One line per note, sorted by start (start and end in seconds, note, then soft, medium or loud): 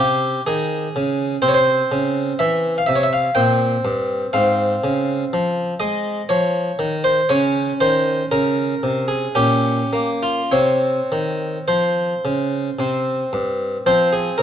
0.00 0.38 C3 soft
0.00 1.41 C4 soft
0.00 0.40 G4 medium
0.46 0.87 D#3 soft
0.46 1.44 G#4 medium
0.96 1.35 C#3 soft
1.42 1.82 C3 medium
1.42 3.33 C4 soft
1.42 1.50 C5 medium
1.48 1.57 C#5 medium
1.54 2.40 C5 medium
1.91 2.31 C#3 soft
2.39 2.79 E3 medium
2.39 2.73 E5 medium
2.78 2.87 F5 medium
2.87 3.28 C3 medium
2.87 2.96 E5 medium
2.96 3.05 C#5 medium
3.03 3.13 E5 medium
3.13 3.37 F5 medium
3.35 3.75 A#2 medium
3.35 4.30 C4 soft
3.35 4.19 G5 medium
3.85 4.24 G2 medium
4.33 4.74 G#2 medium
4.33 7.25 C4 soft
4.33 5.59 F5 medium
4.84 5.23 C#3 medium
5.33 5.72 F3 medium
5.80 6.20 G#3 soft
5.80 6.22 D#5 medium
6.29 6.70 F3 soft
6.29 6.93 C#5 medium
6.79 7.19 D#3 medium
7.04 7.29 C5 medium
7.29 7.70 C#3 medium
7.29 9.32 C#4 soft
7.29 7.72 C#5 medium
7.80 8.21 D#3 medium
7.80 8.24 C5 medium
8.31 8.73 C#3 medium
8.31 9.09 A#4 medium
8.83 9.25 C3 soft
9.08 9.35 G#4 medium
9.35 9.81 A#2 soft
9.35 10.48 C#4 soft
9.35 10.09 G4 medium
9.93 10.40 A#3 soft
10.23 10.52 F4 medium
10.51 10.99 C3 soft
10.51 12.74 C4 soft
10.51 11.67 C#5 medium
11.12 11.57 D#3 soft
11.68 12.12 F3 soft
11.68 13.08 C5 medium
12.25 12.68 C#3 soft
12.79 13.22 C3 soft
12.79 13.83 C4 soft
13.33 13.76 G2 soft
13.86 14.28 F3 medium
13.86 14.43 C4 soft
13.86 14.12 C5 medium
14.13 14.38 G#4 medium
14.38 14.43 C3 soft
14.38 14.43 A#4 medium